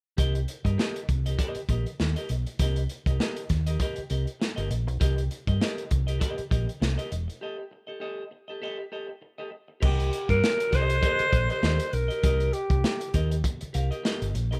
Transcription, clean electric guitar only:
0.17 0.39 G4 medium
0.17 0.35 A#4 medium
0.17 0.34 D#5 medium
0.35 muted clean electric guitar stroke soft
0.49 muted clean electric guitar stroke soft
0.65 0.77 G4 medium
0.65 0.77 A#4 medium
0.65 0.78 D#5 medium
0.78 1.00 G4 medium
0.78 1.00 A#4 medium
0.78 1.00 D#5 medium
1.09 muted clean electric guitar stroke soft
1.26 1.37 G4 soft
1.26 1.38 A#4 soft
1.26 1.39 D#5 medium
1.38 1.60 G4 medium
1.38 1.56 A#4 medium
1.38 1.56 D#5 medium
1.57 muted clean electric guitar stroke soft
1.69 1.87 G4 medium
1.69 1.87 A#4 medium
1.69 1.86 D#5 medium
1.87 muted clean electric guitar stroke soft
2.00 muted clean electric guitar stroke soft
2.16 2.29 G4 medium
2.16 2.30 A#4 medium
2.16 2.31 D#5 medium
2.31 muted clean electric guitar stroke soft
2.47 muted clean electric guitar stroke soft
2.60 2.81 G4 medium
2.60 2.78 A#4 medium
2.60 2.77 D#5 medium
2.78 muted clean electric guitar stroke soft
2.91 muted clean electric guitar stroke soft
3.07 3.18 G4 soft
3.07 3.19 A#4 medium
3.07 3.20 D#5 medium
3.20 3.41 G4 medium
3.20 3.42 A#4 medium
3.20 3.42 D#5 medium
3.50 muted clean electric guitar stroke soft
3.67 3.80 G4 medium
3.67 3.81 A#4 medium
3.67 3.81 D#5 medium
3.81 4.02 G4 medium
3.81 3.97 A#4 medium
3.81 3.95 D#5 medium
3.97 muted clean electric guitar stroke medium
4.10 4.28 G4 soft
4.10 4.26 A#4 medium
4.10 4.25 D#5 medium
4.26 muted clean electric guitar stroke soft
4.40 muted clean electric guitar stroke soft
4.56 4.69 G4 medium
4.56 4.69 A#4 medium
4.56 4.70 D#5 medium
4.70 muted clean electric guitar stroke soft
4.87 muted clean electric guitar stroke soft
5.00 5.22 G4 medium
5.00 5.17 A#4 medium
5.00 5.15 D#5 medium
5.17 muted clean electric guitar stroke soft
5.32 muted clean electric guitar stroke soft
5.48 5.59 G4 soft
5.48 5.60 A#4 soft
5.48 5.62 D#5 medium
5.61 5.82 G4 medium
5.61 5.83 A#4 medium
5.61 5.83 D#5 medium
5.90 muted clean electric guitar stroke soft
6.07 6.19 G4 medium
6.07 6.19 A#4 medium
6.07 6.20 D#5 medium
6.20 6.42 G4 medium
6.20 6.37 A#4 medium
6.20 6.36 D#5 loud
6.37 muted clean electric guitar stroke soft
6.51 6.69 G4 medium
6.51 6.68 A#4 medium
6.51 6.66 D#5 medium
6.68 muted clean electric guitar stroke soft
6.80 muted clean electric guitar stroke soft
6.98 7.10 G4 medium
6.98 7.10 A#4 medium
6.98 7.11 D#5 medium
7.11 muted clean electric guitar stroke soft
7.28 muted clean electric guitar stroke soft
7.41 7.63 G4 medium
7.41 7.58 A4 medium
7.41 7.57 D#5 medium
7.58 muted clean electric guitar stroke soft
7.71 muted clean electric guitar stroke soft
7.87 7.99 G4 soft
7.87 8.00 A4 soft
7.87 8.00 D#5 soft
8.00 8.23 G4 medium
8.00 8.23 A4 medium
8.00 8.23 D#5 medium
8.31 muted clean electric guitar stroke soft
8.48 8.60 G4 medium
8.48 8.61 A4 medium
8.48 8.62 D#5 medium
8.62 8.84 G4 medium
8.62 8.79 A4 medium
8.62 8.78 D#5 medium
8.79 muted clean electric guitar stroke soft
8.92 9.10 G4 medium
8.92 9.08 A4 medium
8.92 9.07 D#5 medium
9.08 muted clean electric guitar stroke medium
9.22 muted clean electric guitar stroke soft
9.38 9.50 G4 medium
9.38 9.50 A4 medium
9.38 9.51 D#5 medium
9.51 muted clean electric guitar stroke soft
9.68 muted clean electric guitar stroke soft
9.80 10.10 G4 medium
9.80 10.10 A#4 loud
9.80 10.11 D#5 medium
10.29 muted clean electric guitar stroke soft
10.42 muted clean electric guitar stroke soft
10.59 muted clean electric guitar stroke soft
10.71 10.94 G4 medium
10.71 10.88 A#4 medium
10.71 10.86 D#5 loud
10.87 muted clean electric guitar stroke soft
11.01 11.24 G4 medium
11.01 11.25 A#4 loud
11.01 11.25 D#5 loud
11.32 muted clean electric guitar stroke soft
11.49 11.61 G4 medium
11.49 11.62 A#4 medium
11.49 11.63 D#5 medium
11.62 11.85 G4 medium
11.62 11.85 A#4 medium
11.62 11.85 D#5 medium
11.92 muted clean electric guitar stroke soft
12.08 12.22 G4 soft
12.08 12.22 A#4 soft
12.08 12.23 D#5 medium
12.23 12.52 G4 medium
12.23 12.52 A#4 medium
12.23 12.52 D#5 loud
12.71 muted clean electric guitar stroke soft
12.84 muted clean electric guitar stroke soft
13.00 muted clean electric guitar stroke soft
13.14 13.36 G4 medium
13.14 13.31 A#4 medium
13.14 13.30 D#5 medium
13.31 muted clean electric guitar stroke medium
13.44 muted clean electric guitar stroke medium
13.61 muted clean electric guitar stroke soft
13.73 13.91 G4 medium
13.73 13.90 A#4 medium
13.73 13.90 F5 medium
13.91 14.02 G4 soft
13.91 14.04 A#4 medium
13.91 14.04 D#5 medium
14.04 14.26 G4 medium
14.04 14.26 A#4 medium
14.04 14.27 D#5 medium
14.34 muted clean electric guitar stroke soft
14.51 14.60 G4 soft
14.51 14.60 A#4 medium
14.51 14.60 D#5 medium

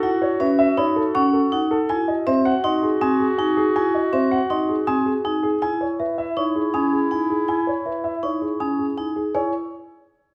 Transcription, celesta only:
0.40 0.64 E5 medium
0.78 1.02 B5 medium
1.15 1.39 C#6 medium
2.27 2.51 E5 medium
2.64 2.88 C6 medium
3.01 3.25 D#6 medium
4.13 4.37 E5 medium
4.50 4.74 C6 medium
4.87 5.12 D#6 medium
6.00 6.24 E5 medium
6.37 6.61 C#6 medium
6.74 6.98 D#6 medium
7.86 8.10 E5 soft
8.23 8.47 C#6 medium
8.60 8.84 D#6 medium
9.35 9.52 G#5 medium

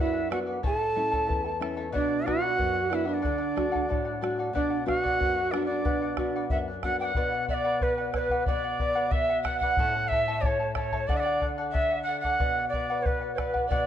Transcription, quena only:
0.00 0.29 E5 medium
0.32 0.39 F#5 medium
0.66 1.58 A5 medium
1.93 2.27 D5 medium
2.26 2.90 F#5 loud
2.90 2.96 F#5 medium
2.95 3.09 E5 medium
3.09 3.15 E5 medium
3.14 4.22 D5 medium
4.54 4.85 D5 medium
4.87 4.98 F5 loud
4.98 5.53 F#5 loud
5.51 5.65 D5 medium
5.66 6.45 D5 medium
6.50 6.57 E5 medium
6.83 6.98 F#5 medium
7.00 7.06 G5 medium
7.05 7.46 F#5 medium
7.50 7.55 E5 medium
7.54 7.84 D5 loud
7.83 8.13 B4 medium
8.14 8.20 C#5 medium
8.19 8.45 B4 medium
8.47 9.13 D5 medium
9.12 9.43 E5 loud
9.44 9.60 F#5 medium
9.60 10.10 F#5 loud
10.08 10.43 E5 loud
10.41 10.47 D5 medium
10.46 10.73 C#5 medium
10.74 11.09 C#5 medium
10.74 10.78 D5 medium
11.07 11.18 D5 medium
11.17 11.46 D5 medium
11.17 11.21 E5 medium
11.71 12.02 E5 medium
12.03 12.19 F#5 medium
12.20 12.68 F#5 loud
12.69 13.04 D5 medium
13.02 13.34 B4 medium
13.02 13.07 C#5 medium
13.35 13.67 B4 medium
13.35 13.40 C#5 medium
13.70 13.87 D5 medium

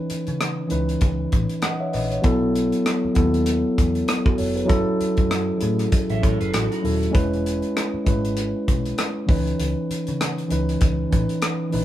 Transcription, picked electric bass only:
0.11 muted picked electric bass stroke soft
0.28 0.61 C#3 medium
0.72 0.95 C#2 medium
1.02 1.25 C#2 medium
1.33 1.46 A1 medium
1.95 2.17 A#1 medium
2.24 2.70 B1 loud
3.05 muted picked electric bass stroke soft
3.17 3.63 D#2 medium
3.79 4.01 E2 medium
4.40 4.63 F1 medium
4.70 4.83 F#1 loud
5.01 muted picked electric bass stroke soft
5.18 5.51 F#2 medium
5.63 5.85 A2 medium
6.10 6.20 A1 medium
6.24 6.37 A1 medium
6.41 6.50 F#1 medium
6.54 6.67 A1 medium
6.84 7.07 D#1 medium
7.15 7.61 E1 loud
7.94 muted picked electric bass stroke soft
8.07 8.53 G#1 medium
8.69 8.91 B1 medium
9.29 9.52 C#2 medium
9.60 9.73 C#2 medium
9.91 muted picked electric bass stroke soft
10.08 10.41 C#3 medium
10.52 10.74 C#2 medium
10.82 11.05 C#2 medium
11.13 11.26 A1 medium
11.74 11.85 A#1 medium

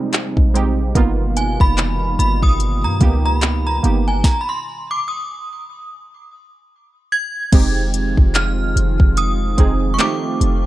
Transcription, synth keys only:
0.00 0.50 G3 loud
0.00 0.49 G#3 medium
0.00 0.50 C4 medium
0.00 0.50 D#4 medium
0.54 0.93 G#3 medium
0.54 0.93 C4 medium
0.54 0.93 D#4 medium
0.54 0.94 G4 medium
0.95 2.50 A#3 medium
0.95 2.50 B3 medium
0.95 2.50 D#4 medium
0.95 2.51 F4 medium
3.01 3.78 A#3 medium
3.01 3.78 B3 medium
3.01 3.79 D#4 medium
3.01 3.79 G4 medium
3.83 4.22 A#3 medium
3.83 4.22 B3 medium
3.83 4.22 D#4 medium
3.83 4.23 G4 medium
7.52 9.07 G#3 medium
7.52 9.07 C4 medium
7.52 9.08 D#4 medium
7.52 9.08 G4 medium
9.58 9.99 G#3 medium
9.58 9.98 C4 medium
9.58 9.99 D#4 medium
9.58 10.00 G#4 medium
9.99 10.66 A3 medium
9.99 10.66 C4 medium
9.99 10.66 D#4 medium
9.99 10.66 G4 medium

